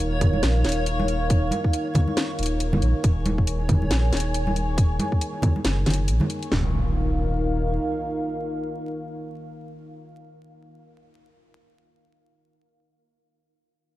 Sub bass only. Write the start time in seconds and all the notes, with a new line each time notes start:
Already playing: D#1
0.43 A#1
0.65 D#1
2.39 D#1
2.82 A#1
3.04 D#1
3.91 A#1
4.13 D#1
5.65 F#1
5.87 F#1
6.08 A#1
6.52 D#1